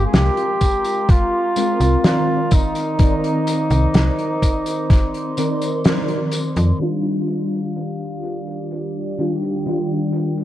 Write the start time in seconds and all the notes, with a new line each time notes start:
Already playing: G#3 C4 F4 A#4 F5 A#5 C6
0.06 G#4
0.14 C2 G4, snare, closed hi-hat, tambourine
0.37 closed hi-hat
0.61 kick, closed hi-hat, tambourine
0.84 closed hi-hat, tambourine
1.09 F4, kick, closed hi-hat, tambourine
1.56 G#3 C4 F4 A#4, closed hi-hat, tambourine
1.80 C2, closed hi-hat, tambourine
2.03 D#3 C4 F4 A#4 D5, snare, closed hi-hat, tambourine
2.51 D#4 C5 D6, kick, closed hi-hat, tambourine
2.75 closed hi-hat, tambourine
2.98 D#3 C4 A#4 D5, kick, closed hi-hat, tambourine
3.24 closed hi-hat
3.47 closed hi-hat, tambourine
3.70 C2, closed hi-hat, tambourine
3.94 C2, snare, closed hi-hat, tambourine
4.19 closed hi-hat
4.42 C6, kick, closed hi-hat, tambourine
4.66 closed hi-hat, tambourine
4.90 kick, snare, closed hi-hat, tambourine
5.14 closed hi-hat
5.37 D#3 C4 A#4 D5, closed hi-hat, tambourine
5.62 closed hi-hat, tambourine
5.84 D#3 C4 A#4 D5, snare, closed hi-hat, tambourine
6.08 closed hi-hat
6.31 closed hi-hat, tambourine
6.56 F2, closed hi-hat, tambourine
6.79 D#3 G3 D4 F4 G4 D5 F5, closed hi-hat
7.28 closed hi-hat, tambourine
7.52 closed hi-hat, tambourine
7.76 closed hi-hat, tambourine
7.99 closed hi-hat
8.23 closed hi-hat, tambourine
8.47 closed hi-hat, tambourine
8.70 G5, closed hi-hat, tambourine
9.18 D#3 G3 D4 F4, closed hi-hat, tambourine
9.42 closed hi-hat, tambourine
9.66 D#3 G3 D4 F4, closed hi-hat, tambourine
10.12 closed hi-hat, tambourine
10.37 closed hi-hat, tambourine